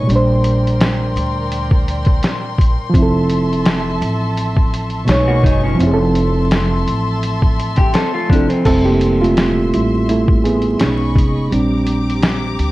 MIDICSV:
0, 0, Header, 1, 6, 480
1, 0, Start_track
1, 0, Key_signature, -1, "major"
1, 0, Tempo, 714286
1, 55, Time_signature, 4, 2, 24, 8
1, 8546, End_track
2, 0, Start_track
2, 0, Title_t, "String section"
2, 0, Program_c, 0, 48
2, 55, Note_on_c, 0, 74, 70
2, 56, Note_on_c, 0, 84, 91
2, 57, Note_on_c, 0, 70, 78
2, 59, Note_on_c, 0, 79, 72
2, 1956, Note_off_c, 0, 74, 0
2, 1957, Note_off_c, 0, 70, 0
2, 1958, Note_off_c, 0, 79, 0
2, 1976, Note_on_c, 0, 69, 75
2, 1977, Note_on_c, 0, 76, 76
2, 1977, Note_on_c, 0, 81, 73
2, 3389, Note_off_c, 0, 84, 0
2, 3401, Note_off_c, 0, 69, 0
2, 3401, Note_off_c, 0, 76, 0
2, 3401, Note_off_c, 0, 81, 0
2, 3417, Note_on_c, 0, 75, 65
2, 3417, Note_on_c, 0, 80, 66
2, 3417, Note_on_c, 0, 85, 79
2, 3419, Note_on_c, 0, 71, 69
2, 3891, Note_off_c, 0, 75, 0
2, 3891, Note_off_c, 0, 80, 0
2, 3891, Note_off_c, 0, 85, 0
2, 3891, Note_on_c, 0, 81, 72
2, 3892, Note_off_c, 0, 71, 0
2, 3892, Note_on_c, 0, 69, 76
2, 3893, Note_on_c, 0, 84, 93
2, 3894, Note_on_c, 0, 76, 72
2, 5794, Note_off_c, 0, 69, 0
2, 5794, Note_off_c, 0, 81, 0
2, 5795, Note_off_c, 0, 76, 0
2, 5795, Note_off_c, 0, 84, 0
2, 5814, Note_on_c, 0, 76, 73
2, 5815, Note_on_c, 0, 84, 84
2, 7240, Note_off_c, 0, 76, 0
2, 7241, Note_off_c, 0, 84, 0
2, 7254, Note_on_c, 0, 68, 73
2, 7257, Note_on_c, 0, 75, 64
2, 7257, Note_on_c, 0, 83, 64
2, 7258, Note_on_c, 0, 85, 74
2, 7730, Note_off_c, 0, 68, 0
2, 7731, Note_off_c, 0, 75, 0
2, 7731, Note_off_c, 0, 83, 0
2, 7731, Note_off_c, 0, 85, 0
2, 7732, Note_on_c, 0, 86, 92
2, 7733, Note_on_c, 0, 67, 82
2, 7733, Note_on_c, 0, 82, 73
2, 7735, Note_on_c, 0, 60, 72
2, 8546, Note_off_c, 0, 60, 0
2, 8546, Note_off_c, 0, 67, 0
2, 8546, Note_off_c, 0, 82, 0
2, 8546, Note_off_c, 0, 86, 0
2, 8546, End_track
3, 0, Start_track
3, 0, Title_t, "Reed electric piano"
3, 0, Program_c, 1, 4
3, 0, Control_c, 1, 64, 127
3, 0, Note_on_c, 1, 73, 81
3, 20, Note_on_c, 1, 46, 78
3, 49, Note_on_c, 1, 55, 63
3, 63, Control_c, 1, 64, 0
3, 72, Note_off_c, 1, 73, 0
3, 77, Note_on_c, 1, 62, 60
3, 105, Note_on_c, 1, 72, 87
3, 188, Control_c, 1, 64, 127
3, 1931, Note_off_c, 1, 46, 0
3, 1945, Note_off_c, 1, 55, 0
3, 1946, Note_on_c, 1, 53, 79
3, 1959, Note_off_c, 1, 62, 0
3, 1973, Note_off_c, 1, 72, 0
3, 1973, Note_on_c, 1, 60, 69
3, 1983, Control_c, 1, 64, 0
3, 2003, Note_on_c, 1, 64, 65
3, 2032, Note_on_c, 1, 69, 78
3, 2096, Control_c, 1, 64, 127
3, 3374, Note_off_c, 1, 53, 0
3, 3387, Note_off_c, 1, 60, 0
3, 3394, Note_on_c, 1, 47, 79
3, 3402, Note_off_c, 1, 64, 0
3, 3407, Note_on_c, 1, 56, 69
3, 3417, Note_off_c, 1, 69, 0
3, 3421, Note_on_c, 1, 63, 72
3, 3423, Control_c, 1, 64, 0
3, 3437, Note_on_c, 1, 73, 90
3, 3545, Control_c, 1, 64, 127
3, 3859, Note_on_c, 1, 53, 75
3, 3884, Note_off_c, 1, 47, 0
3, 3888, Note_on_c, 1, 60, 70
3, 3891, Note_off_c, 1, 56, 0
3, 3898, Note_off_c, 1, 63, 0
3, 3902, Control_c, 1, 64, 0
3, 3906, Note_off_c, 1, 73, 0
3, 3917, Note_on_c, 1, 64, 70
3, 3944, Note_on_c, 1, 68, 61
3, 3968, Note_off_c, 1, 68, 0
3, 3988, Note_on_c, 1, 69, 92
3, 4027, Control_c, 1, 64, 127
3, 5530, Note_off_c, 1, 53, 0
3, 5545, Note_off_c, 1, 60, 0
3, 5559, Note_off_c, 1, 64, 0
3, 5571, Note_on_c, 1, 53, 57
3, 5585, Note_on_c, 1, 60, 53
3, 5595, Note_off_c, 1, 69, 0
3, 5598, Note_on_c, 1, 64, 48
3, 5613, Note_on_c, 1, 69, 58
3, 5809, Note_off_c, 1, 69, 0
3, 5813, Note_off_c, 1, 53, 0
3, 5817, Note_on_c, 1, 69, 108
3, 5820, Note_off_c, 1, 60, 0
3, 5822, Note_off_c, 1, 64, 0
3, 5822, Note_on_c, 1, 55, 56
3, 5824, Control_c, 1, 64, 0
3, 5825, Note_on_c, 1, 57, 53
3, 5830, Note_on_c, 1, 60, 86
3, 5830, Note_on_c, 1, 64, 62
3, 5930, Control_c, 1, 64, 127
3, 5946, Note_off_c, 1, 60, 0
3, 5949, Note_on_c, 1, 67, 94
3, 5953, Note_off_c, 1, 69, 0
3, 5961, Note_on_c, 1, 58, 71
3, 6147, Note_off_c, 1, 55, 0
3, 6149, Note_off_c, 1, 57, 0
3, 6152, Note_off_c, 1, 64, 0
3, 6178, Note_off_c, 1, 58, 0
3, 6192, Note_on_c, 1, 65, 91
3, 6195, Note_off_c, 1, 67, 0
3, 6204, Note_on_c, 1, 57, 71
3, 6539, Note_off_c, 1, 57, 0
3, 6544, Note_on_c, 1, 55, 49
3, 6547, Note_on_c, 1, 57, 45
3, 6549, Note_on_c, 1, 64, 57
3, 6756, Note_off_c, 1, 55, 0
3, 6757, Note_off_c, 1, 57, 0
3, 6758, Note_off_c, 1, 64, 0
3, 6782, Note_on_c, 1, 64, 88
3, 6793, Note_on_c, 1, 57, 66
3, 6795, Note_off_c, 1, 65, 0
3, 7008, Note_off_c, 1, 57, 0
3, 7016, Note_on_c, 1, 68, 81
3, 7026, Note_off_c, 1, 64, 0
3, 7027, Note_on_c, 1, 59, 72
3, 7258, Note_on_c, 1, 56, 57
3, 7263, Note_on_c, 1, 61, 51
3, 7264, Control_c, 1, 64, 0
3, 7268, Note_on_c, 1, 63, 63
3, 7391, Control_c, 1, 64, 127
3, 7469, Note_off_c, 1, 68, 0
3, 7474, Note_off_c, 1, 59, 0
3, 7712, Note_off_c, 1, 56, 0
3, 7715, Note_off_c, 1, 61, 0
3, 7718, Note_off_c, 1, 63, 0
3, 7738, Note_on_c, 1, 55, 57
3, 7743, Control_c, 1, 64, 0
3, 7744, Note_on_c, 1, 60, 50
3, 7748, Note_on_c, 1, 62, 59
3, 7864, Control_c, 1, 64, 127
3, 8430, Note_off_c, 1, 55, 0
3, 8433, Note_off_c, 1, 60, 0
3, 8434, Note_off_c, 1, 62, 0
3, 8546, End_track
4, 0, Start_track
4, 0, Title_t, "Clean electric guitar"
4, 0, Program_c, 2, 27
4, 3547, Note_on_c, 2, 66, 71
4, 3549, Note_on_c, 2, 58, 62
4, 3649, Note_off_c, 2, 66, 0
4, 3651, Note_off_c, 2, 58, 0
4, 3655, Note_on_c, 2, 63, 88
4, 3662, Note_on_c, 2, 54, 75
4, 3781, Note_off_c, 2, 63, 0
4, 3785, Note_off_c, 2, 54, 0
4, 3787, Note_on_c, 2, 61, 76
4, 3793, Note_on_c, 2, 53, 64
4, 4015, Note_off_c, 2, 61, 0
4, 4018, Note_off_c, 2, 53, 0
4, 5224, Note_on_c, 2, 67, 67
4, 5328, Note_off_c, 2, 67, 0
4, 5336, Note_on_c, 2, 69, 78
4, 5340, Note_on_c, 2, 60, 68
4, 5461, Note_off_c, 2, 69, 0
4, 5463, Note_off_c, 2, 60, 0
4, 5470, Note_on_c, 2, 65, 70
4, 5473, Note_on_c, 2, 57, 65
4, 5571, Note_off_c, 2, 65, 0
4, 5573, Note_off_c, 2, 57, 0
4, 5575, Note_on_c, 2, 62, 84
4, 5581, Note_on_c, 2, 53, 65
4, 5701, Note_off_c, 2, 62, 0
4, 5704, Note_off_c, 2, 53, 0
4, 5708, Note_on_c, 2, 60, 69
4, 5714, Note_on_c, 2, 52, 64
4, 5936, Note_off_c, 2, 60, 0
4, 5939, Note_off_c, 2, 52, 0
4, 8546, End_track
5, 0, Start_track
5, 0, Title_t, "Upright bass"
5, 0, Program_c, 3, 32
5, 61, Note_on_c, 3, 34, 94
5, 751, Note_off_c, 3, 34, 0
5, 778, Note_on_c, 3, 38, 93
5, 1470, Note_off_c, 3, 38, 0
5, 1738, Note_on_c, 3, 34, 83
5, 1854, Note_off_c, 3, 34, 0
5, 1977, Note_on_c, 3, 29, 97
5, 2669, Note_off_c, 3, 29, 0
5, 2697, Note_on_c, 3, 33, 82
5, 3389, Note_off_c, 3, 33, 0
5, 3415, Note_on_c, 3, 35, 100
5, 3628, Note_off_c, 3, 35, 0
5, 3654, Note_on_c, 3, 30, 90
5, 3867, Note_off_c, 3, 30, 0
5, 3894, Note_on_c, 3, 29, 100
5, 4588, Note_off_c, 3, 29, 0
5, 4616, Note_on_c, 3, 33, 86
5, 5309, Note_off_c, 3, 33, 0
5, 5577, Note_on_c, 3, 29, 76
5, 5693, Note_off_c, 3, 29, 0
5, 5818, Note_on_c, 3, 29, 104
5, 6510, Note_off_c, 3, 29, 0
5, 6542, Note_on_c, 3, 33, 81
5, 7232, Note_off_c, 3, 33, 0
5, 7260, Note_on_c, 3, 35, 94
5, 7499, Note_on_c, 3, 29, 86
5, 7509, Note_off_c, 3, 35, 0
5, 7710, Note_off_c, 3, 29, 0
5, 7742, Note_on_c, 3, 34, 94
5, 8432, Note_off_c, 3, 34, 0
5, 8462, Note_on_c, 3, 38, 82
5, 8546, Note_off_c, 3, 38, 0
5, 8546, End_track
6, 0, Start_track
6, 0, Title_t, "Drums"
6, 67, Note_on_c, 9, 42, 67
6, 134, Note_off_c, 9, 42, 0
6, 297, Note_on_c, 9, 42, 65
6, 364, Note_off_c, 9, 42, 0
6, 451, Note_on_c, 9, 42, 32
6, 519, Note_off_c, 9, 42, 0
6, 541, Note_on_c, 9, 42, 79
6, 546, Note_on_c, 9, 38, 114
6, 608, Note_off_c, 9, 42, 0
6, 613, Note_off_c, 9, 38, 0
6, 786, Note_on_c, 9, 42, 62
6, 853, Note_off_c, 9, 42, 0
6, 1020, Note_on_c, 9, 42, 75
6, 1087, Note_off_c, 9, 42, 0
6, 1150, Note_on_c, 9, 36, 94
6, 1217, Note_off_c, 9, 36, 0
6, 1265, Note_on_c, 9, 42, 62
6, 1332, Note_off_c, 9, 42, 0
6, 1377, Note_on_c, 9, 42, 33
6, 1388, Note_on_c, 9, 36, 99
6, 1444, Note_off_c, 9, 42, 0
6, 1455, Note_off_c, 9, 36, 0
6, 1497, Note_on_c, 9, 42, 75
6, 1506, Note_on_c, 9, 38, 103
6, 1564, Note_off_c, 9, 42, 0
6, 1573, Note_off_c, 9, 38, 0
6, 1736, Note_on_c, 9, 36, 92
6, 1754, Note_on_c, 9, 42, 64
6, 1803, Note_off_c, 9, 36, 0
6, 1822, Note_off_c, 9, 42, 0
6, 1975, Note_on_c, 9, 36, 109
6, 1982, Note_on_c, 9, 42, 68
6, 2043, Note_off_c, 9, 36, 0
6, 2050, Note_off_c, 9, 42, 0
6, 2215, Note_on_c, 9, 42, 67
6, 2282, Note_off_c, 9, 42, 0
6, 2371, Note_on_c, 9, 42, 34
6, 2439, Note_off_c, 9, 42, 0
6, 2456, Note_on_c, 9, 42, 73
6, 2462, Note_on_c, 9, 38, 108
6, 2523, Note_off_c, 9, 42, 0
6, 2529, Note_off_c, 9, 38, 0
6, 2702, Note_on_c, 9, 42, 62
6, 2769, Note_off_c, 9, 42, 0
6, 2939, Note_on_c, 9, 42, 72
6, 3006, Note_off_c, 9, 42, 0
6, 3068, Note_on_c, 9, 36, 94
6, 3135, Note_off_c, 9, 36, 0
6, 3183, Note_on_c, 9, 42, 64
6, 3250, Note_off_c, 9, 42, 0
6, 3292, Note_on_c, 9, 42, 34
6, 3359, Note_off_c, 9, 42, 0
6, 3412, Note_on_c, 9, 42, 81
6, 3421, Note_on_c, 9, 38, 114
6, 3479, Note_off_c, 9, 42, 0
6, 3488, Note_off_c, 9, 38, 0
6, 3653, Note_on_c, 9, 36, 91
6, 3670, Note_on_c, 9, 42, 66
6, 3720, Note_off_c, 9, 36, 0
6, 3737, Note_off_c, 9, 42, 0
6, 3900, Note_on_c, 9, 42, 70
6, 3968, Note_off_c, 9, 42, 0
6, 4134, Note_on_c, 9, 42, 61
6, 4201, Note_off_c, 9, 42, 0
6, 4375, Note_on_c, 9, 42, 80
6, 4380, Note_on_c, 9, 38, 107
6, 4442, Note_off_c, 9, 42, 0
6, 4448, Note_off_c, 9, 38, 0
6, 4621, Note_on_c, 9, 42, 59
6, 4689, Note_off_c, 9, 42, 0
6, 4859, Note_on_c, 9, 42, 74
6, 4926, Note_off_c, 9, 42, 0
6, 4988, Note_on_c, 9, 36, 91
6, 5055, Note_off_c, 9, 36, 0
6, 5105, Note_on_c, 9, 42, 62
6, 5172, Note_off_c, 9, 42, 0
6, 5216, Note_on_c, 9, 42, 33
6, 5226, Note_on_c, 9, 36, 100
6, 5283, Note_off_c, 9, 42, 0
6, 5294, Note_off_c, 9, 36, 0
6, 5334, Note_on_c, 9, 42, 83
6, 5343, Note_on_c, 9, 38, 104
6, 5401, Note_off_c, 9, 42, 0
6, 5410, Note_off_c, 9, 38, 0
6, 5576, Note_on_c, 9, 36, 88
6, 5595, Note_on_c, 9, 42, 67
6, 5643, Note_off_c, 9, 36, 0
6, 5662, Note_off_c, 9, 42, 0
6, 5712, Note_on_c, 9, 42, 39
6, 5779, Note_off_c, 9, 42, 0
6, 5815, Note_on_c, 9, 49, 91
6, 5816, Note_on_c, 9, 36, 98
6, 5823, Note_on_c, 9, 42, 63
6, 5882, Note_off_c, 9, 49, 0
6, 5883, Note_off_c, 9, 36, 0
6, 5891, Note_off_c, 9, 42, 0
6, 6056, Note_on_c, 9, 42, 63
6, 6123, Note_off_c, 9, 42, 0
6, 6211, Note_on_c, 9, 42, 33
6, 6278, Note_off_c, 9, 42, 0
6, 6297, Note_on_c, 9, 42, 78
6, 6302, Note_on_c, 9, 38, 108
6, 6364, Note_off_c, 9, 42, 0
6, 6369, Note_off_c, 9, 38, 0
6, 6543, Note_on_c, 9, 42, 62
6, 6610, Note_off_c, 9, 42, 0
6, 6781, Note_on_c, 9, 42, 75
6, 6848, Note_off_c, 9, 42, 0
6, 6909, Note_on_c, 9, 36, 90
6, 6976, Note_off_c, 9, 36, 0
6, 7025, Note_on_c, 9, 42, 60
6, 7093, Note_off_c, 9, 42, 0
6, 7136, Note_on_c, 9, 42, 34
6, 7203, Note_off_c, 9, 42, 0
6, 7255, Note_on_c, 9, 42, 86
6, 7264, Note_on_c, 9, 38, 104
6, 7322, Note_off_c, 9, 42, 0
6, 7331, Note_off_c, 9, 38, 0
6, 7496, Note_on_c, 9, 36, 94
6, 7516, Note_on_c, 9, 42, 68
6, 7564, Note_off_c, 9, 36, 0
6, 7583, Note_off_c, 9, 42, 0
6, 7744, Note_on_c, 9, 42, 64
6, 7811, Note_off_c, 9, 42, 0
6, 7974, Note_on_c, 9, 42, 65
6, 8041, Note_off_c, 9, 42, 0
6, 8129, Note_on_c, 9, 42, 34
6, 8196, Note_off_c, 9, 42, 0
6, 8216, Note_on_c, 9, 42, 79
6, 8221, Note_on_c, 9, 38, 118
6, 8283, Note_off_c, 9, 42, 0
6, 8288, Note_off_c, 9, 38, 0
6, 8462, Note_on_c, 9, 42, 62
6, 8529, Note_off_c, 9, 42, 0
6, 8546, End_track
0, 0, End_of_file